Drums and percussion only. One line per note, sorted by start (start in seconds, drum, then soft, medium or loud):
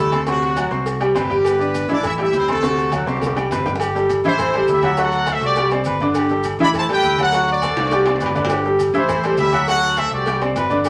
0.12 cowbell medium
0.12 high conga medium
0.12 low agogo loud
0.12 maracas soft
0.27 cowbell loud
0.27 high conga soft
0.27 low agogo medium
0.27 maracas medium
0.42 low agogo medium
0.42 maracas soft
0.56 cowbell medium
0.56 high conga medium
0.56 low agogo loud
0.56 maracas medium
0.71 cowbell medium
0.71 maracas soft
0.86 cowbell loud
0.86 high conga soft
0.86 low agogo medium
0.86 maracas medium
1.01 low agogo loud
1.01 maracas soft
1.15 cowbell medium
1.15 high conga medium
1.15 low timbale medium
1.15 low agogo medium
1.15 maracas medium
1.30 high conga medium
1.30 maracas soft
1.45 cowbell loud
1.45 high conga soft
1.45 low agogo loud
1.45 maracas medium
1.61 maracas soft
1.74 cowbell medium
1.74 high conga medium
1.74 low agogo medium
1.74 maracas medium
1.89 cowbell medium
1.89 maracas soft
2.03 cowbell loud
2.03 high conga soft
2.03 low conga medium
2.03 low agogo loud
2.03 maracas medium
2.18 cowbell medium
2.18 high conga soft
2.18 low agogo medium
2.18 maracas soft
2.33 cowbell medium
2.33 high conga medium
2.33 low timbale medium
2.33 maracas medium
2.48 cowbell medium
2.48 high conga loud
2.48 low agogo loud
2.48 maracas soft
2.63 cowbell loud
2.63 high conga soft
2.63 low agogo medium
2.63 maracas medium
2.77 low agogo medium
2.77 maracas soft
2.92 cowbell medium
2.92 high conga loud
2.92 low agogo loud
2.92 maracas medium
3.07 cowbell medium
3.07 high bongo medium
3.07 maracas soft
3.17 high bongo medium
3.21 cowbell loud
3.21 high conga loud
3.21 low agogo medium
3.21 maracas medium
3.27 high bongo loud
3.36 low bongo medium
3.36 low agogo loud
3.36 maracas soft
3.51 cowbell medium
3.51 low conga medium
3.51 low timbale medium
3.51 low agogo medium
3.51 maracas medium
3.66 low bongo loud
3.66 low conga medium
3.66 maracas soft
3.76 low bongo medium
3.80 cowbell loud
3.80 high conga soft
3.80 low agogo loud
3.80 maracas medium
3.96 maracas soft
4.09 cowbell medium
4.09 high conga medium
4.09 low agogo medium
4.09 maracas medium
4.24 cowbell medium
4.24 maracas soft
4.38 cowbell loud
4.38 high conga soft
4.38 low conga medium
4.38 low agogo medium
4.38 maracas medium
4.53 cowbell medium
4.53 high conga soft
4.53 low agogo loud
4.53 maracas soft
4.67 cowbell medium
4.67 high conga medium
4.67 maracas medium
4.83 cowbell medium
4.83 high conga medium
4.83 low agogo loud
4.83 maracas soft
4.97 cowbell loud
4.97 low agogo medium
4.97 maracas medium
5.12 high conga soft
5.12 low agogo medium
5.12 maracas soft
5.26 cowbell medium
5.26 high conga medium
5.26 low agogo loud
5.26 maracas medium
5.41 cowbell medium
5.41 high conga soft
5.41 maracas soft
5.55 cowbell loud
5.55 high conga soft
5.55 low agogo medium
5.55 maracas medium
5.71 low agogo loud
5.71 maracas soft
5.84 cowbell medium
5.84 high conga medium
5.84 low agogo medium
5.84 maracas medium
6.00 high conga medium
6.00 maracas soft
6.14 cowbell loud
6.14 high conga soft
6.14 low agogo loud
6.14 maracas medium
6.29 high conga soft
6.29 maracas soft
6.44 cowbell medium
6.44 high conga medium
6.44 low agogo loud
6.44 maracas medium
6.59 cowbell medium
6.59 maracas soft
6.74 cowbell loud
6.74 high conga soft
6.74 low conga medium
6.74 low agogo loud
6.74 maracas medium
6.89 cowbell medium
6.89 high conga soft
6.89 low agogo medium
6.89 maracas soft
7.03 cowbell medium
7.03 high conga loud
7.03 maracas medium
7.18 cowbell medium
7.18 high conga medium
7.18 low agogo loud
7.18 maracas soft
7.32 cowbell loud
7.32 high conga soft
7.32 low agogo medium
7.32 maracas medium
7.47 high conga soft
7.47 low agogo medium
7.47 maracas soft
7.62 cowbell medium
7.62 high conga medium
7.62 low agogo loud
7.62 maracas medium
7.76 cowbell medium
7.76 high conga soft
7.76 high timbale loud
7.76 maracas soft
7.87 high timbale medium
7.91 cowbell loud
7.91 low agogo medium
7.91 maracas medium
8.06 high timbale loud
8.06 low agogo loud
8.06 maracas soft
8.16 low timbale medium
8.20 cowbell medium
8.20 high conga medium
8.20 low agogo medium
8.20 maracas medium
8.26 low timbale medium
8.36 high conga medium
8.36 low timbale medium
8.36 maracas soft
8.45 low timbale loud
8.49 cowbell loud
8.49 low agogo loud
8.49 maracas medium
8.65 high conga soft
8.65 maracas soft
8.79 cowbell medium
8.79 high conga medium
8.79 low agogo medium
8.79 maracas medium
8.94 cowbell medium
8.94 maracas soft
9.09 cowbell loud
9.09 high conga soft
9.09 low conga medium
9.09 low agogo loud
9.09 maracas medium
9.23 cowbell medium
9.23 high conga soft
9.23 low agogo loud
9.23 maracas soft
9.37 cowbell medium
9.37 high conga medium
9.37 low timbale medium
9.37 maracas medium
9.52 cowbell medium
9.52 high conga medium
9.52 low agogo loud
9.52 maracas soft
9.67 cowbell loud
9.67 low agogo medium
9.67 maracas medium
9.82 low agogo medium
9.82 maracas soft
9.96 cowbell medium
9.96 high conga medium
9.96 low agogo loud
9.96 maracas medium
10.11 cowbell medium
10.11 high conga soft
10.11 maracas soft
10.26 cowbell loud
10.26 high conga soft
10.26 low agogo medium
10.26 maracas medium
10.41 high conga soft
10.41 low agogo loud
10.41 maracas soft
10.56 cowbell medium
10.56 high conga medium
10.56 low timbale medium
10.56 low agogo medium
10.56 maracas medium
10.70 high conga medium
10.70 maracas soft
10.84 cowbell loud
10.84 high conga soft
10.84 low agogo loud
10.84 maracas medium